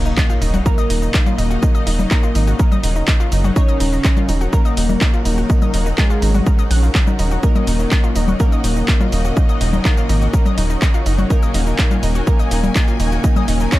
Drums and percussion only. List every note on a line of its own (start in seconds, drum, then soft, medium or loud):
0.06 shaker soft
0.17 kick loud
0.17 clap loud
0.17 shaker medium
0.30 shaker soft
0.42 open hi-hat loud
0.42 shaker medium
0.54 low conga medium
0.54 shaker soft
0.66 kick loud
0.66 shaker medium
0.78 shaker soft
0.90 open hi-hat loud
0.90 shaker medium
1.02 shaker soft
1.14 kick loud
1.14 clap loud
1.14 shaker medium
1.26 low conga medium
1.26 shaker soft
1.38 open hi-hat loud
1.38 shaker medium
1.51 shaker soft
1.63 kick loud
1.63 shaker medium
1.75 shaker soft
1.87 open hi-hat loud
1.87 shaker medium
1.99 low conga medium
1.99 shaker soft
2.11 kick loud
2.11 clap loud
2.11 shaker medium
2.23 shaker soft
2.35 open hi-hat loud
2.35 shaker medium
2.47 shaker soft
2.59 kick loud
2.59 shaker medium
2.72 low conga medium
2.72 shaker soft
2.83 open hi-hat loud
2.83 shaker medium
2.96 shaker soft
3.08 kick loud
3.08 clap loud
3.08 shaker medium
3.20 shaker soft
3.32 open hi-hat loud
3.32 shaker medium
3.44 low conga medium
3.44 shaker soft
3.56 kick loud
3.56 shaker medium
3.68 shaker soft
3.80 open hi-hat loud
3.80 shaker medium
3.93 shaker soft
4.05 kick loud
4.05 clap loud
4.05 shaker medium
4.17 low conga medium
4.17 shaker soft
4.29 open hi-hat loud
4.29 shaker medium
4.41 shaker soft
4.53 kick loud
4.53 shaker medium
4.65 shaker soft
4.77 open hi-hat loud
4.77 shaker medium
4.89 low conga medium
4.89 shaker soft
5.01 kick loud
5.01 clap loud
5.01 shaker medium
5.14 shaker soft
5.25 open hi-hat loud
5.25 shaker medium
5.38 shaker soft
5.50 kick loud
5.50 shaker medium
5.62 low conga medium
5.62 shaker soft
5.74 open hi-hat loud
5.74 shaker medium
5.86 shaker soft
5.98 kick loud
5.98 clap loud
5.98 shaker medium
6.10 shaker soft
6.22 open hi-hat loud
6.22 shaker medium
6.34 low conga medium
6.34 shaker soft
6.46 kick loud
6.46 shaker medium
6.59 shaker soft
6.71 open hi-hat loud
6.71 shaker medium
6.83 shaker soft
6.95 kick loud
6.95 clap loud
6.95 shaker medium
7.07 low conga loud
7.07 shaker soft
7.19 open hi-hat loud
7.19 shaker medium
7.31 shaker soft
7.43 kick loud
7.43 shaker medium
7.55 low conga medium
7.55 shaker soft
7.67 open hi-hat loud
7.67 shaker medium
7.79 shaker soft
7.91 kick loud
7.91 clap loud
7.91 shaker medium
8.04 shaker soft
8.16 open hi-hat loud
8.16 shaker medium
8.28 low conga loud
8.28 shaker soft
8.40 kick loud
8.40 shaker medium
8.52 shaker soft
8.64 open hi-hat loud
8.64 shaker medium
8.76 shaker soft
8.88 kick loud
8.88 clap loud
8.88 shaker medium
9.01 low conga medium
9.01 shaker soft
9.12 open hi-hat loud
9.12 shaker medium
9.25 shaker soft
9.37 kick loud
9.37 shaker medium
9.49 shaker soft
9.61 open hi-hat loud
9.61 shaker medium
9.73 low conga loud
9.73 shaker soft
9.85 kick loud
9.85 clap loud
9.85 shaker medium
9.97 shaker soft
10.09 open hi-hat loud
10.09 shaker medium
10.22 shaker soft
10.34 kick loud
10.34 shaker medium
10.46 low conga loud
10.46 shaker soft
10.58 open hi-hat loud
10.58 shaker medium
10.70 shaker soft
10.82 kick loud
10.82 clap loud
10.82 shaker medium
10.94 shaker soft
11.06 open hi-hat loud
11.06 shaker medium
11.18 low conga loud
11.18 shaker soft
11.30 kick loud
11.30 shaker medium
11.43 shaker soft
11.54 open hi-hat loud
11.54 shaker medium
11.67 shaker soft
11.79 kick loud
11.79 clap loud
11.79 shaker medium
11.91 low conga medium
11.91 shaker soft
12.03 open hi-hat loud
12.03 shaker medium
12.15 shaker soft
12.27 kick loud
12.27 shaker medium
12.39 shaker soft
12.51 open hi-hat loud
12.51 shaker medium
12.64 low conga loud
12.64 shaker soft
12.75 kick loud
12.75 clap loud
12.75 shaker medium
12.88 shaker soft
13.00 open hi-hat loud
13.00 shaker medium
13.12 shaker soft
13.24 kick loud
13.24 shaker medium
13.36 low conga medium
13.36 shaker soft
13.48 open hi-hat loud
13.48 shaker medium
13.60 shaker soft
13.72 kick loud
13.72 clap loud
13.72 shaker medium